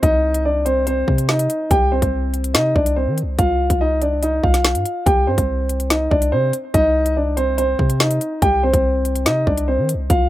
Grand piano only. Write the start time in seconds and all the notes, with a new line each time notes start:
0.03 D#4 D#5
0.45 D4 D5
0.65 C4 C5
0.87 C4 C5
1.29 D#4 D#5
1.71 G4 G5
1.92 C4 C5
2.54 D#4 D#5
2.75 D4 D5
2.96 C4 C5
3.39 F4 F5
3.81 D#4 D#5
4.02 D4 D5
4.23 D#4 D#5
4.43 F4 F5
5.06 G4 G5
5.27 C4 C5
5.90 D#4 D#5
6.11 D4 D5
6.32 C4 C5
6.74 D#4 D#5
7.17 D4 D5
7.37 C4 C5
7.58 C4 C5
8.01 D#4 D#5
8.42 G4 G5
8.63 C4 C5
9.26 D#4 D#5
9.47 D4 D5
9.68 C4 C5
10.10 F4 F5